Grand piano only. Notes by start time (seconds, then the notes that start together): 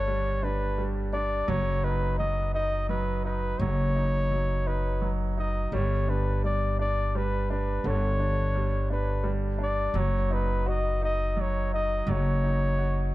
Already playing: D3 G3 D4
0.08 G3
0.43 D4
0.78 G3
1.13 D4
1.48 F#3
1.84 D#4
2.19 F#3
2.54 D#4
2.89 F#3
3.25 D#4
3.62 F#3
3.96 D#4
4.31 F#3
4.66 D#4
5.02 F#3
5.37 D#4
5.73 G3
6.08 D4
6.44 G3
6.79 D4
7.15 G3
7.50 D4
7.85 D3
8.20 D4
8.55 G3
8.90 D4
9.24 G3
9.59 D4
9.95 F#3
10.30 D#4
10.66 F#4
11.01 D#4
11.37 F#3
11.73 D#4
12.08 F#3
12.44 D#4
12.79 F#4